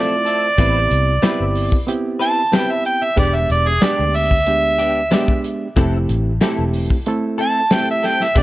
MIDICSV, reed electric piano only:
0, 0, Header, 1, 2, 480
1, 0, Start_track
1, 0, Tempo, 647948
1, 434, Time_signature, 4, 2, 24, 8
1, 6243, End_track
2, 0, Start_track
2, 0, Title_t, "Reed electric piano"
2, 0, Program_c, 0, 4
2, 0, Note_on_c, 0, 57, 68
2, 0, Note_on_c, 0, 60, 66
2, 0, Note_on_c, 0, 64, 68
2, 0, Note_on_c, 0, 65, 88
2, 355, Note_off_c, 0, 57, 0
2, 358, Note_off_c, 0, 60, 0
2, 360, Note_off_c, 0, 64, 0
2, 361, Note_off_c, 0, 65, 0
2, 431, Note_on_c, 0, 59, 70
2, 435, Note_on_c, 0, 60, 75
2, 439, Note_on_c, 0, 64, 74
2, 443, Note_on_c, 0, 67, 83
2, 836, Note_off_c, 0, 59, 0
2, 838, Note_off_c, 0, 60, 0
2, 840, Note_off_c, 0, 64, 0
2, 842, Note_off_c, 0, 67, 0
2, 907, Note_on_c, 0, 59, 84
2, 912, Note_on_c, 0, 60, 85
2, 914, Note_on_c, 0, 64, 91
2, 916, Note_on_c, 0, 67, 101
2, 1314, Note_off_c, 0, 59, 0
2, 1316, Note_off_c, 0, 60, 0
2, 1317, Note_off_c, 0, 64, 0
2, 1318, Note_off_c, 0, 67, 0
2, 1385, Note_on_c, 0, 59, 79
2, 1389, Note_on_c, 0, 60, 73
2, 1394, Note_on_c, 0, 64, 77
2, 1397, Note_on_c, 0, 67, 94
2, 1793, Note_off_c, 0, 59, 0
2, 1795, Note_off_c, 0, 60, 0
2, 1798, Note_off_c, 0, 64, 0
2, 1799, Note_off_c, 0, 67, 0
2, 1866, Note_on_c, 0, 59, 70
2, 1870, Note_on_c, 0, 60, 65
2, 1876, Note_on_c, 0, 64, 66
2, 1879, Note_on_c, 0, 67, 83
2, 2273, Note_off_c, 0, 59, 0
2, 2276, Note_off_c, 0, 60, 0
2, 2279, Note_off_c, 0, 64, 0
2, 2280, Note_off_c, 0, 67, 0
2, 2343, Note_on_c, 0, 56, 77
2, 2346, Note_on_c, 0, 59, 73
2, 2350, Note_on_c, 0, 62, 68
2, 2353, Note_on_c, 0, 67, 78
2, 2752, Note_off_c, 0, 56, 0
2, 2754, Note_off_c, 0, 59, 0
2, 2755, Note_off_c, 0, 62, 0
2, 2757, Note_off_c, 0, 67, 0
2, 2824, Note_on_c, 0, 56, 72
2, 2829, Note_on_c, 0, 59, 66
2, 2833, Note_on_c, 0, 62, 70
2, 2836, Note_on_c, 0, 67, 86
2, 3233, Note_off_c, 0, 56, 0
2, 3235, Note_off_c, 0, 59, 0
2, 3237, Note_off_c, 0, 62, 0
2, 3238, Note_off_c, 0, 67, 0
2, 3309, Note_on_c, 0, 56, 71
2, 3309, Note_on_c, 0, 59, 59
2, 3315, Note_on_c, 0, 62, 68
2, 3319, Note_on_c, 0, 67, 78
2, 3715, Note_off_c, 0, 56, 0
2, 3715, Note_off_c, 0, 59, 0
2, 3718, Note_off_c, 0, 62, 0
2, 3720, Note_off_c, 0, 67, 0
2, 3788, Note_on_c, 0, 56, 86
2, 3792, Note_on_c, 0, 59, 79
2, 3798, Note_on_c, 0, 62, 76
2, 3800, Note_on_c, 0, 67, 89
2, 4194, Note_off_c, 0, 56, 0
2, 4197, Note_off_c, 0, 59, 0
2, 4199, Note_off_c, 0, 62, 0
2, 4200, Note_off_c, 0, 67, 0
2, 4270, Note_on_c, 0, 57, 80
2, 4272, Note_on_c, 0, 60, 80
2, 4276, Note_on_c, 0, 64, 82
2, 4282, Note_on_c, 0, 67, 93
2, 4675, Note_off_c, 0, 57, 0
2, 4676, Note_off_c, 0, 60, 0
2, 4679, Note_off_c, 0, 64, 0
2, 4681, Note_off_c, 0, 67, 0
2, 4752, Note_on_c, 0, 57, 87
2, 4758, Note_on_c, 0, 60, 84
2, 4761, Note_on_c, 0, 64, 82
2, 4765, Note_on_c, 0, 67, 105
2, 5157, Note_off_c, 0, 57, 0
2, 5159, Note_off_c, 0, 60, 0
2, 5161, Note_off_c, 0, 64, 0
2, 5163, Note_off_c, 0, 67, 0
2, 5234, Note_on_c, 0, 57, 91
2, 5237, Note_on_c, 0, 60, 77
2, 5242, Note_on_c, 0, 64, 80
2, 5246, Note_on_c, 0, 69, 91
2, 5637, Note_off_c, 0, 57, 0
2, 5639, Note_off_c, 0, 60, 0
2, 5641, Note_off_c, 0, 64, 0
2, 5644, Note_off_c, 0, 69, 0
2, 5712, Note_on_c, 0, 57, 78
2, 5713, Note_on_c, 0, 60, 67
2, 5716, Note_on_c, 0, 64, 71
2, 5722, Note_on_c, 0, 67, 77
2, 6116, Note_off_c, 0, 57, 0
2, 6117, Note_off_c, 0, 60, 0
2, 6118, Note_off_c, 0, 64, 0
2, 6121, Note_off_c, 0, 67, 0
2, 6195, Note_on_c, 0, 56, 80
2, 6201, Note_on_c, 0, 59, 66
2, 6203, Note_on_c, 0, 62, 71
2, 6207, Note_on_c, 0, 67, 89
2, 6243, Note_off_c, 0, 56, 0
2, 6243, Note_off_c, 0, 59, 0
2, 6243, Note_off_c, 0, 62, 0
2, 6243, Note_off_c, 0, 67, 0
2, 6243, End_track
0, 0, End_of_file